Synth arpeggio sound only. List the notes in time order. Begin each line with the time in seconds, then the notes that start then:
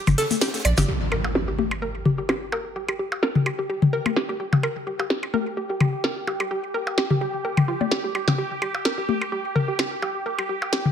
0.18 A4
0.41 G4
0.65 D5
0.78 G4
0.88 G4
1.12 A#4
1.35 G4
1.48 G4
1.59 G4
1.82 A#4
2.06 G4
2.18 G4
2.29 G4
2.52 A#4
2.76 G4
2.89 G4
2.99 G4
3.23 A#4
3.46 G4
3.59 G4
3.70 G4
3.93 A#4
4.16 G4
4.29 G4
4.40 G4
4.63 A#4
4.87 G4
4.99 G4
5.10 G4
5.34 A#4
5.57 G4
5.70 G4
5.81 G4
6.04 A#4
6.27 G4
6.40 G4
6.51 G4
6.74 A#4
6.98 G4
7.11 G4
7.21 G4
7.45 A#4
7.68 F4
7.81 D5
7.92 G4
8.04 G4
8.15 G4
8.38 G4
8.62 G4
8.85 A#4
8.98 G4
9.09 G4
9.32 G4
9.56 A#4
9.68 G4
9.79 G4
10.02 G4
10.26 A#4
10.39 G4
10.49 G4
10.73 G4